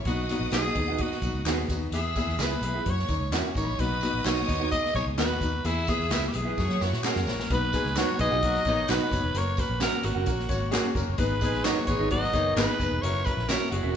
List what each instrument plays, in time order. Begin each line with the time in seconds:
0.05 fingered electric bass B1, grand piano B3 D#4 F#4, alto saxophone F#4, string section D#5 D#6, kick, closed hi-hat, tambourine
0.29 grand piano B3 D#4 F#4, snare, closed hi-hat, tambourine
0.39 fingered electric bass A#1
0.51 fingered electric bass B1, grand piano B3 D#4 G#4, clean electric guitar D#4 F#4 B4 F#5, alto saxophone G#4, snare, clap, closed hi-hat, tambourine
0.75 fingered electric bass D#2, grand piano B3 D#4 G#4, kick, closed hi-hat
0.88 clean electric guitar D#4 F#4 B4 F#5
0.98 grand piano B3 D#4 F#4, alto saxophone F#4, kick, closed hi-hat
1.12 snare
1.22 fingered electric bass B1, grand piano B3 D#4 F#4, kick, closed hi-hat, tambourine
1.34 fingered electric bass C#2
1.45 fingered electric bass D#2, grand piano B3 D#4 G#4, clean electric guitar D#4 F#4 B4 F#5, snare, clap, closed hi-hat, tambourine
1.68 fingered electric bass D#2, grand piano B3 D#4 F#4, kick, closed hi-hat, tambourine
1.92 fingered electric bass E2, grand piano B3 E4 G#4, alto saxophone G#4, string section E5 E6, closed hi-hat, tambourine
2.16 grand piano B3 E4 G#4, kick, snare, closed hi-hat, tambourine
2.27 fingered electric bass E2, snare
2.39 fingered electric bass C#2, grand piano B3 E4 G#4, clean electric guitar E4 G#4 B4 E5, alto saxophone B4, snare, clap, closed hi-hat, tambourine
2.61 fingered electric bass B1, grand piano B3 E4 G#4, closed hi-hat, tambourine
2.74 clean electric guitar E4 G#4 B4 E5
2.86 fingered electric bass F#2, grand piano A#3 C#4 F#4, string section C#5 C#6, kick, closed hi-hat
2.90 alto saxophone C#5
2.99 snare
3.08 fingered electric bass D#2, grand piano A#3 C#4 D#4, kick, closed hi-hat, tambourine
3.19 fingered electric bass C#2
3.31 fingered electric bass E2, grand piano A#3 C#4 E4, clean electric guitar C#4 F#4 A#4 F#5, string section E4 E5, snare, clap, closed hi-hat, tambourine
3.40 string section F#4 F#5
3.48 string section G#4 G#5
3.55 fingered electric bass G#1, grand piano A#3 C#4 D#4, string section A#4 A#5, alto saxophone C#5, kick, closed hi-hat, tambourine
3.64 fingered electric bass A#1, string section B4 B5
3.70 string section C#5 C#6
3.79 fingered electric bass B1, grand piano B3 D#4 F#4, alto saxophone B4, string section D#5 D#6, kick, closed hi-hat, tambourine
4.01 grand piano B3 D#4 F#4, snare, closed hi-hat, tambourine
4.14 fingered electric bass A#1
4.25 fingered electric bass B1, grand piano B3 D#4 F#4, clean electric guitar D#4 F#4 B4 F#5, alto saxophone C#5, snare, clap, closed hi-hat, tambourine
4.48 fingered electric bass D#2, grand piano B3 D#4 F#4, kick, closed hi-hat, tambourine
4.60 clean electric guitar D#4 F#4 B4 F#5
4.71 grand piano B3 D#4 G#4, alto saxophone D#5, kick, closed hi-hat, tambourine
4.85 snare
4.94 fingered electric bass B1, grand piano B3 D#4 G#4, alto saxophone C#5, kick, closed hi-hat, tambourine
5.06 fingered electric bass C#2
5.18 fingered electric bass D#2, grand piano B3 D#4 F#4, clean electric guitar D#4 F#4 B4 F#5, alto saxophone B4, snare, clap, closed hi-hat, tambourine
5.41 fingered electric bass D#2, grand piano B3 D#4 F#4, kick, closed hi-hat, tambourine
5.64 fingered electric bass E2, grand piano B3 E4 G#4, alto saxophone E4, string section E5 E6, closed hi-hat, tambourine
5.87 grand piano B3 E4 G#4, alto saxophone G#4, kick, snare, closed hi-hat, tambourine
6.00 fingered electric bass E2, snare
6.10 fingered electric bass C#2, grand piano B3 E4 G#4, clean electric guitar E4 G#4 B4 E5, alto saxophone E4, snare, clap, closed hi-hat, tambourine
6.28 alto saxophone G4
6.34 fingered electric bass B1, grand piano B3 E4 G#4, alto saxophone G#4, closed hi-hat, tambourine
6.45 clean electric guitar E4 G#4 B4 E5
6.58 fingered electric bass F#2, grand piano A#3 C#4 F#4, string section C#5 C#6, kick, snare, tambourine
6.69 fingered electric bass F#3, snare
6.81 fingered electric bass F#2, grand piano A#3 C#4 E4, alto saxophone F#4, snare, tambourine
6.92 fingered electric bass A#2, snare
7.04 grand piano A#3 C#4 G#4, clean electric guitar C#4 F#4 A#4 F#5, alto saxophone A#4, snare, clap, tambourine
7.16 fingered electric bass F#2, snare
7.27 fingered electric bass A#1, grand piano A#3 C#4 F#4, snare, tambourine
7.40 snare
7.50 fingered electric bass B1, grand piano B3 D#4 F#4 B4, alto saxophone B4, kick, closed hi-hat, tambourine
7.73 horn section G#3 G#4, grand piano B3 D#4 F#4 B4, kick, snare, closed hi-hat, tambourine
7.85 fingered electric bass C#2, snare
7.96 horn section F#3 F#4, grand piano B3 D#4 F#4 B4, clean electric guitar D#4 F#4 B4 F#5, alto saxophone C#5, snare, clap, closed hi-hat, tambourine
8.19 fingered electric bass B1, horn section G#3 G#4, grand piano B3 D#4 F#4 B4, alto saxophone D#5, kick, closed hi-hat, tambourine
8.31 fingered electric bass B1, clean electric guitar D#4 F#4 B4 F#5
8.43 horn section F#3 F#4, grand piano B3 D#4 F#4 A#4, kick, closed hi-hat
8.55 snare
8.65 fingered electric bass A#1, horn section D#3 D#4, grand piano B3 D#4 F#4 C#5, kick, closed hi-hat, tambourine
8.88 fingered electric bass B1, grand piano B3 D#4 F#4 B4, clean electric guitar D#4 F#4 B4 F#5, alto saxophone B4, snare, clap, closed hi-hat, tambourine
9.11 fingered electric bass F#1, grand piano B3 D#4 F#4 C#5, kick, closed hi-hat, tambourine
9.23 fingered electric bass E1
9.35 fingered electric bass F#1, grand piano A#3 C#4 F#4 A#4, alto saxophone C#5, closed hi-hat, tambourine
9.57 grand piano A#3 C#4 F#4 A#4, alto saxophone B4, kick, snare, closed hi-hat, tambourine
9.70 fingered electric bass A#1
9.80 grand piano A#3 C#4 F#4 A#4, clean electric guitar C#4 F#4 A#4 F#5, alto saxophone A#4, snare, clap, closed hi-hat, tambourine
10.03 fingered electric bass G#1, grand piano A#3 C#4 F#4 A#4, alto saxophone F#4, closed hi-hat, tambourine
10.15 fingered electric bass F#1, clean electric guitar C#4 F#4 A#4 F#5
10.26 fingered electric bass A#1, grand piano A#3 C#4 F#4 A#4, kick, closed hi-hat, tambourine
10.40 snare
10.49 fingered electric bass G#1, grand piano A#3 C#4 F#4 C#5, kick, closed hi-hat, tambourine
10.71 grand piano A#3 C#4 F#4 G#4, clean electric guitar C#4 F#4 A#4 F#5, snare, clap, closed hi-hat, tambourine
10.95 fingered electric bass F#1, grand piano A#3 C#4 F#4 A#4, kick, closed hi-hat, tambourine
11.07 fingered electric bass F#1
11.12 alto saxophone C#5
11.18 fingered electric bass G#1, grand piano B3 D#4 G#4 B4, alto saxophone B4, kick, closed hi-hat, tambourine
11.41 horn section G#3 G#4, grand piano B3 D#4 G#4 B4, kick, snare, closed hi-hat, tambourine
11.53 fingered electric bass A#1, snare
11.64 horn section F#3 F#4, grand piano B3 D#4 G#4 A#4, clean electric guitar D#4 G#4 B4 D#5, alto saxophone C#5, snare, clap, closed hi-hat, tambourine
11.87 fingered electric bass G#1, horn section G#3 G#4, grand piano B3 D#4 G#4 B4, alto saxophone C#5, kick, closed hi-hat, tambourine
11.99 fingered electric bass G#1, clean electric guitar D#4 G#4 B4 D#5
12.11 horn section F#3 F#4, grand piano B3 D#4 G#4 B4, alto saxophone D#5, kick, closed hi-hat
12.24 snare
12.33 fingered electric bass F#1, horn section D#3 D#4, grand piano B3 D#4 G#4 C#5, kick, closed hi-hat, tambourine
12.56 fingered electric bass G#1, grand piano B3 D#4 G#4 B4, clean electric guitar D#4 G#4 B4 D#5, alto saxophone B4, snare, clap, closed hi-hat, tambourine
12.79 fingered electric bass F#1, grand piano B3 D#4 G#4 B4, kick, closed hi-hat, tambourine
12.91 fingered electric bass E1
13.02 fingered electric bass F#1, grand piano C#4 E4 F#4 A#4, alto saxophone C#5, closed hi-hat, tambourine
13.24 grand piano C#4 E4 F#4 A#4, alto saxophone B4, kick, snare, closed hi-hat, tambourine
13.37 fingered electric bass A#1, snare
13.48 grand piano C#4 E4 F#4 C#5, clean electric guitar C#4 F#4 A#4 E5, alto saxophone A#4, snare, clap, closed hi-hat, tambourine
13.71 fingered electric bass F#1, grand piano C#4 E4 F#4 G#4, alto saxophone F#4, closed hi-hat
13.83 fingered electric bass E1, clean electric guitar C#4 F#4 A#4 E5